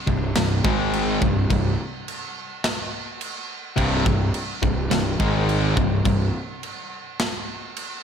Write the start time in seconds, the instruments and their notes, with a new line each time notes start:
0.07 picked electric bass C1, distorted electric guitar C2 G2, kick
0.36 picked electric bass C1, distorted electric guitar C2 G2, snare, crash
0.64 picked electric bass G#1, distorted electric guitar G#2 D#3 G#3, kick
0.94 crash
1.21 picked electric bass C1, distorted electric guitar C2 G2, kick
1.50 picked electric bass C1, distorted electric guitar C2 G2, kick, crash
2.08 crash
2.64 snare, crash
3.21 crash
3.76 picked electric bass C1, distorted electric guitar C2 G2 C3, kick, crash
4.06 picked electric bass C1, distorted electric guitar C2 G2, kick
4.34 crash
4.62 picked electric bass C1, distorted electric guitar C2 G2, kick
4.91 picked electric bass C1, distorted electric guitar C2 G2, snare, crash
5.20 picked electric bass G#1, distorted electric guitar G#2 D#3 G#3, kick
5.49 crash
5.77 picked electric bass C1, distorted electric guitar C2 G2, kick
6.05 picked electric bass C1, distorted electric guitar C2 G2, kick, crash
6.63 crash
7.20 snare, crash
7.77 crash